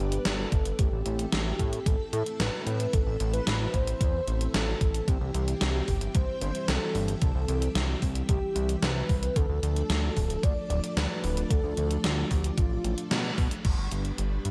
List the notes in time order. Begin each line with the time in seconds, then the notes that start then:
Already playing: G3 B3 D4 G4 B4 D5
0.00 G1
0.12 closed hi-hat
0.18 B4
0.25 G1 A4, snare, closed hi-hat
0.52 G1, kick, closed hi-hat
0.65 closed hi-hat
0.79 A1 E3 A3 C4 G4 A4 E5, kick, closed hi-hat
0.92 A1
1.06 A1, closed hi-hat
1.19 closed hi-hat
1.32 A1, snare, closed hi-hat
1.59 A2, kick, closed hi-hat
1.73 closed hi-hat
1.86 A1 A4, kick, closed hi-hat
2.13 A2 A4, closed hi-hat
2.26 closed hi-hat
2.40 A1 B4, snare, closed hi-hat
2.67 A2, closed hi-hat
2.80 closed hi-hat
2.93 A1 A4, kick, closed hi-hat
3.07 A1
3.20 A1, closed hi-hat
3.34 B4, closed hi-hat
3.47 A1, snare, closed hi-hat
3.74 A1 C5, kick, closed hi-hat
3.87 closed hi-hat
4.01 E2, kick, closed hi-hat
4.27 A1, closed hi-hat
4.41 closed hi-hat
4.54 A1 A4, snare, closed hi-hat
4.81 A1, kick, closed hi-hat
4.94 closed hi-hat
5.08 C2 G3 G4 E5, kick, closed hi-hat
5.21 C2
5.34 C2, closed hi-hat
5.48 closed hi-hat
5.61 C2, snare, closed hi-hat
5.88 G1, kick, open hi-hat
6.01 closed hi-hat
6.15 C2 C5, kick, closed hi-hat
6.41 G1 C5, closed hi-hat
6.55 closed hi-hat
6.68 C2 A4, snare, closed hi-hat
6.95 G1, open hi-hat
7.08 closed hi-hat
7.22 C2 A4, kick, closed hi-hat
7.35 C2
7.48 C2, closed hi-hat
7.62 closed hi-hat
7.75 C2, snare, closed hi-hat
8.02 C2, kick, open hi-hat
8.15 closed hi-hat
8.29 C2 G4, kick, closed hi-hat
8.56 C2, closed hi-hat
8.69 closed hi-hat
8.82 C2 B4, snare, closed hi-hat
9.09 C2, kick, open hi-hat
9.23 closed hi-hat
9.36 D2 F3 A3 D4 A4 D5, kick, closed hi-hat
9.49 D2
9.63 D2, closed hi-hat
9.76 closed hi-hat
9.90 D2, snare, closed hi-hat
10.16 D1, kick, open hi-hat
10.30 closed hi-hat
10.43 D2 D5, kick, closed hi-hat
10.70 D1 D5, closed hi-hat
10.84 closed hi-hat
10.97 D2 B4, snare, closed hi-hat
11.24 D1, open hi-hat
11.37 closed hi-hat
11.50 D2 A4, kick, closed hi-hat
11.64 D2
11.77 D2, closed hi-hat
11.91 closed hi-hat
12.04 D2 G4, snare, closed hi-hat
12.31 D2, kick, open hi-hat
12.44 closed hi-hat
12.58 A1 F4, kick, closed hi-hat
12.84 A1, closed hi-hat
12.98 closed hi-hat
13.11 B2, snare, closed hi-hat
13.38 B2, kick, open hi-hat
13.51 closed hi-hat
13.65 G1 G3 B3 D4 B4 D5, kick, closed hi-hat, crash
13.78 G1
13.91 G1, closed hi-hat
14.05 closed hi-hat
14.18 G1, closed hi-hat
14.45 G2, closed hi-hat